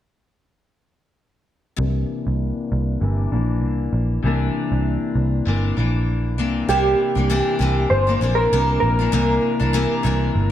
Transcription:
1.77 C2 C3 E3 A#3 D4
2.27 C2
2.72 C2
3.00 G1 C3 E3 A#3 D4
3.32 A#1 E3 A#3 D4
3.62 C2
3.93 A#1
4.23 C2 C3 E3 A#3
4.27 D4
4.72 C2
5.16 C2
5.45 G1 C3 E3 A#3 D4
5.77 A#1 E3 A#3 D4
6.38 C2 C3 E3 A#3 D4
6.69 C2 C3 E3 A#3 D4 G4
7.15 C2 E3 A#3 D4
7.30 C3 E3 A#3 D4
7.59 C2 C3 E3 A#3 D4
7.90 G1 C5
8.07 E3 A#3 D4
8.21 A#1 C3 E3 A#3 D4
8.35 A#4
8.53 C2 C3 E3 A#3 D4
8.80 A#1 A#4
8.99 E3 A#3 D4
9.12 C2 C3 E3 A#3 D4
9.60 C2 E3 A#3 D4
9.73 C3 E3 A#3 D4
10.03 C2 C3 E3 A#3 D4
10.35 G1

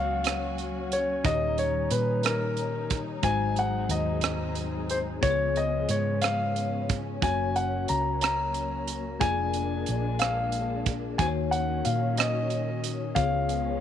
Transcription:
Already playing: C#2 F#3 A#3 C#4 F#4 C#5 F5
0.24 cross-stick, closed hi-hat
0.58 closed hi-hat
0.92 C#5, closed hi-hat
1.24 D#2 A#2 D#3 G3 D#4 G4 C#5 D#5, kick, closed hi-hat
1.58 C#5, closed hi-hat
1.91 A#2 B4, closed hi-hat
2.23 A#4, cross-stick, closed hi-hat
2.57 closed hi-hat
2.90 kick, closed hi-hat
3.22 G#1 G#2 F#3 G#3 C4 D#4 F#4 C5 G#5, kick, closed hi-hat
3.56 F#5, closed hi-hat
3.89 D#2 D#5, closed hi-hat
4.21 cross-stick, closed hi-hat
4.55 closed hi-hat
4.90 C5, closed hi-hat
5.21 C#2 C#3 F3 B3 C#4 F4 G#4 B4 C#5, kick, closed hi-hat
5.31 C#5
5.56 D#5, closed hi-hat
5.89 G#2 C#5, closed hi-hat
6.22 F5, cross-stick, closed hi-hat
6.56 closed hi-hat
6.89 kick, closed hi-hat
7.21 F#1 F#3 A#3 C#4 F#4 C#5 G#5, kick, closed hi-hat
7.56 F#5, closed hi-hat
7.88 C#2 A#5, closed hi-hat
8.21 A#5, cross-stick, closed hi-hat
8.54 closed hi-hat
8.87 closed hi-hat
9.20 F1 A#3 D4 F4 G#4 D5 G#5, kick, closed hi-hat
9.24 G#3
9.53 closed hi-hat
9.86 A#1, closed hi-hat
10.19 F5, cross-stick, closed hi-hat
10.52 closed hi-hat
10.86 kick, closed hi-hat
11.18 D#2 D#3 F#3 A#3 C#4 D#4 F#4 C5 G#5, kick, closed hi-hat
11.27 C#5
11.51 F#5, closed hi-hat
11.85 A#2 F5, closed hi-hat
12.17 D#5, cross-stick, closed hi-hat
12.50 closed hi-hat
12.84 closed hi-hat
13.15 C#2 C#3 F3 G#3 B3 C#4 F4 G#4 C#5 F5, kick, closed hi-hat
13.49 closed hi-hat

